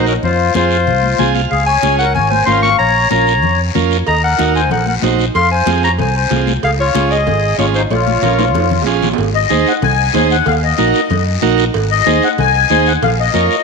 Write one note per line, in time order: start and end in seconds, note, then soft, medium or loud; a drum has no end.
0.00 0.17 A#1 medium
0.00 0.13 D#4 medium
0.00 0.14 F#4 medium
0.00 0.14 A#4 medium
0.06 0.15 C#4 medium
0.06 0.15 A#4 medium
0.06 short guiro medium
0.23 0.49 F2 medium
0.23 0.53 F4 medium
0.23 0.53 C5 medium
0.23 high conga soft
0.23 low conga medium
0.23 long guiro medium
0.54 0.89 F2 medium
0.54 0.77 C4 medium
0.54 0.77 F4 medium
0.54 1.32 F4 medium
0.54 0.78 G#4 medium
0.54 1.31 C5 medium
0.54 high conga medium
0.54 short guiro medium
0.71 short guiro medium
0.87 1.13 C2 medium
0.87 high conga soft
0.87 low conga medium
0.87 long guiro medium
1.03 high conga medium
1.19 1.45 C2 medium
1.19 1.41 C4 medium
1.19 1.42 F4 medium
1.19 1.42 G#4 medium
1.19 1.34 G#5 medium
1.19 high conga medium
1.19 low conga medium
1.19 short guiro medium
1.35 1.50 F5 medium
1.35 high conga medium
1.35 short guiro medium
1.51 1.77 C#2 medium
1.51 1.66 G#4 medium
1.51 1.66 F5 medium
1.51 high conga soft
1.51 long guiro medium
1.67 1.97 C#5 medium
1.67 1.97 G#5 loud
1.83 2.17 C#2 medium
1.83 2.05 C#4 medium
1.83 2.05 F4 medium
1.83 2.06 G#4 medium
1.83 high conga medium
1.83 short guiro medium
1.99 2.14 A#4 medium
1.99 2.14 F#5 medium
1.99 short guiro medium
2.15 2.41 G#1 medium
2.15 2.30 C#5 medium
2.15 2.30 G#5 loud
2.15 high conga soft
2.15 low conga medium
2.15 long guiro medium
2.30 2.46 C5 medium
2.30 2.45 G#5 medium
2.30 high conga medium
2.46 2.73 G#1 loud
2.46 2.69 C#4 medium
2.46 2.69 F4 medium
2.46 2.70 A#4 medium
2.46 2.62 F5 medium
2.46 2.61 C6 loud
2.46 high conga medium
2.46 short guiro medium
2.63 2.78 F5 medium
2.63 2.78 C#6 loud
2.63 high conga medium
2.63 short guiro medium
2.79 3.05 A#1 medium
2.79 3.09 C#5 medium
2.79 3.09 A#5 loud
2.79 high conga soft
2.79 long guiro medium
3.11 3.43 A#1 loud
3.11 3.33 C#4 medium
3.11 3.34 F4 medium
3.11 3.34 A#4 medium
3.11 3.61 C#5 medium
3.11 3.60 A#5 medium
3.11 high conga medium
3.11 short guiro medium
3.27 short guiro medium
3.42 3.69 F2 medium
3.42 high conga soft
3.42 low conga medium
3.42 long guiro medium
3.75 4.01 F2 medium
3.75 3.97 C#4 medium
3.75 3.97 F4 medium
3.75 3.98 A#4 medium
3.75 high conga medium
3.75 low conga medium
3.75 short guiro medium
3.91 short guiro medium
4.07 4.33 D#2 medium
4.07 4.22 D#5 medium
4.07 4.22 A#5 loud
4.07 cowbell medium
4.07 high conga soft
4.07 long guiro medium
4.24 4.53 A#4 medium
4.24 4.53 F#5 medium
4.38 4.71 D#2 medium
4.38 4.61 D#4 medium
4.38 4.61 F#4 medium
4.38 4.62 A#4 medium
4.38 cowbell medium
4.38 high conga medium
4.38 short guiro medium
4.55 4.70 C5 medium
4.55 4.70 G#5 medium
4.55 short guiro medium
4.71 4.97 A#1 medium
4.71 4.86 A#4 medium
4.71 4.86 F#5 medium
4.71 cowbell medium
4.71 high conga soft
4.71 low conga medium
4.71 long guiro medium
4.86 4.94 A#4 medium
4.86 4.95 F#5 medium
4.86 high conga medium
5.02 5.28 A#1 medium
5.02 5.25 D#4 medium
5.02 5.25 F#4 medium
5.02 5.26 C5 medium
5.02 cowbell medium
5.02 high conga medium
5.02 low timbale medium
5.02 short guiro medium
5.19 high conga medium
5.19 short guiro medium
5.35 5.61 F2 medium
5.35 5.50 F5 medium
5.35 5.50 C6 medium
5.35 cowbell medium
5.35 high conga soft
5.35 long guiro medium
5.51 5.81 C5 medium
5.51 5.81 G#5 medium
5.66 6.00 F2 medium
5.66 5.89 C4 medium
5.66 5.89 F4 medium
5.66 5.89 G#4 medium
5.66 cowbell medium
5.66 high conga medium
5.66 short guiro medium
5.83 5.91 C#5 medium
5.83 5.91 A#5 medium
5.83 short guiro medium
5.99 6.24 C2 medium
5.99 6.14 C5 medium
5.99 6.14 G#5 medium
5.99 cowbell medium
5.99 high conga soft
5.99 low conga medium
5.99 long guiro medium
6.16 6.30 C5 medium
6.16 6.31 G#5 medium
6.30 6.57 C2 medium
6.30 6.53 C4 medium
6.30 6.53 F4 medium
6.30 6.53 G#4 medium
6.30 cowbell medium
6.30 high conga medium
6.30 low conga medium
6.30 short guiro medium
6.47 high conga medium
6.47 short guiro medium
6.63 6.89 C#2 loud
6.63 6.70 G#4 medium
6.63 6.71 F5 loud
6.63 cowbell medium
6.63 high conga soft
6.63 long guiro medium
6.79 7.09 F4 medium
6.79 7.13 C#5 loud
6.94 7.29 C#2 medium
6.94 7.17 C#4 medium
6.94 7.17 F4 medium
6.94 7.17 G#4 medium
6.94 cowbell medium
6.94 high conga medium
6.94 short guiro medium
7.11 7.59 G#4 medium
7.11 7.59 D#5 loud
7.11 short guiro medium
7.27 7.53 G#1 medium
7.27 cowbell medium
7.27 high conga soft
7.27 low conga medium
7.27 long guiro medium
7.58 7.84 G#1 medium
7.58 7.81 C#4 medium
7.58 7.66 F4 medium
7.58 7.81 F4 medium
7.58 7.81 G#4 medium
7.58 7.66 C#5 medium
7.58 cowbell medium
7.58 high conga medium
7.58 short guiro medium
7.74 7.82 D#4 medium
7.74 7.82 C5 medium
7.74 short guiro medium
7.90 8.16 A#1 medium
7.90 8.83 F4 medium
7.90 8.83 C#5 medium
7.90 cowbell medium
7.90 high conga medium
7.90 long guiro medium
8.07 high conga medium
8.22 8.55 A#1 loud
8.22 8.45 C#4 medium
8.22 8.45 F4 medium
8.22 8.45 A#4 medium
8.22 cowbell medium
8.22 low conga medium
8.22 short guiro medium
8.39 high conga medium
8.39 high timbale medium
8.39 short guiro medium
8.55 8.87 F2 medium
8.55 cowbell medium
8.55 low conga medium
8.55 long guiro medium
8.60 high timbale medium
8.71 low conga medium
8.82 low timbale medium
8.86 9.12 A#1 medium
8.86 9.09 C#4 medium
8.86 9.09 F4 medium
8.86 9.09 G#4 medium
8.86 cowbell medium
8.86 short guiro medium
9.02 low conga medium
9.02 low timbale medium
9.02 short guiro medium
9.13 low timbale medium
9.18 9.44 G#1 loud
9.18 cowbell loud
9.18 high conga soft
9.18 long guiro medium
9.35 9.68 D#5 medium
9.50 9.64 D#2 medium
9.50 9.73 D#4 medium
9.50 9.73 G#4 medium
9.50 9.73 C5 medium
9.50 high conga medium
9.50 short guiro medium
9.67 9.75 F#5 loud
9.67 short guiro medium
9.82 10.08 C2 loud
9.82 10.28 G#5 loud
9.82 cowbell medium
9.82 high conga soft
9.82 low conga medium
9.82 long guiro medium
10.14 10.40 D#2 loud
10.14 10.36 D#4 medium
10.14 10.37 G#4 medium
10.14 10.37 C5 medium
10.14 high conga medium
10.14 low timbale medium
10.14 short guiro medium
10.30 10.46 F#5 loud
10.30 short guiro medium
10.46 10.72 D#2 loud
10.46 10.54 F5 loud
10.46 cowbell loud
10.46 high conga soft
10.46 low conga medium
10.46 long guiro medium
10.64 11.23 D#5 medium
10.78 10.91 A#1 medium
10.78 11.01 D#4 medium
10.78 11.01 F#4 medium
10.78 11.01 A#4 medium
10.78 high conga medium
10.78 short guiro medium
10.94 short guiro medium
11.10 11.36 F#2 loud
11.10 cowbell medium
11.10 high conga soft
11.10 low conga medium
11.10 long guiro medium
11.42 11.68 A#1 loud
11.42 11.65 D#4 medium
11.42 11.65 F#4 medium
11.42 11.65 A#4 loud
11.42 high conga medium
11.42 short guiro medium
11.58 short guiro medium
11.74 12.00 G#1 loud
11.74 cowbell loud
11.74 high conga soft
11.74 long guiro medium
11.91 12.24 D#5 loud
12.06 12.19 D#2 medium
12.06 12.29 D#4 medium
12.06 12.29 G#4 medium
12.06 12.29 C5 medium
12.06 high conga medium
12.06 short guiro medium
12.22 12.31 F#5 loud
12.22 short guiro medium
12.38 12.64 C2 loud
12.38 12.88 G#5 loud
12.38 cowbell medium
12.38 high conga soft
12.38 low conga medium
12.38 long guiro medium
12.70 12.96 D#2 medium
12.70 12.93 D#4 medium
12.70 12.93 G#4 medium
12.70 12.93 C5 medium
12.70 high conga medium
12.70 short guiro medium
12.86 12.94 F#5 loud
12.86 short guiro medium
13.03 13.28 A#1 loud
13.03 13.10 F5 loud
13.03 cowbell loud
13.03 high conga soft
13.03 low conga medium
13.03 long guiro medium
13.20 13.63 D#5 medium
13.34 13.47 F2 medium
13.34 13.56 F4 medium
13.34 13.56 A#4 medium
13.34 13.57 C#5 medium
13.34 high conga medium
13.34 short guiro medium
13.51 short guiro medium